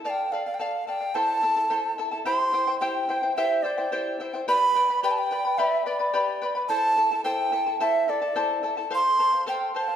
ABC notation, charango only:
X:1
M:2/4
L:1/16
Q:1/4=108
K:C
V:1 name="Charango"
[Adf]2 [Adf] [df] [Adf]2 [Adf] [df] | [EAcea]2 [EAea] [EAa] [EAcea]2 [EAea] [EAa] | [EGceg]2 [Eceg] [Ecg] [EGceg]2 [Eceg] [Ecg] | [EGceg]2 [Eceg] [Ecg] [EGceg]2 [Eceg] [Ecg] |
[GBdgb]2 [Bdgb] [Bdb] [GBdgb]2 [Bdgb] [Bdb] | [GBdgb]2 [Bdgb] [Bdb] [GBdgb]2 [Bdgb] [Bdb] | [EAcea]2 [EAea] [EAa] [EAcea]2 [EAea] [EAa] | [EAcea]2 [EAea] [EAa] [EAcea]2 [EAea] [EAa] |
[Acf]2 [Acf] [cf] [Acf]2 [Acf] [cf] |]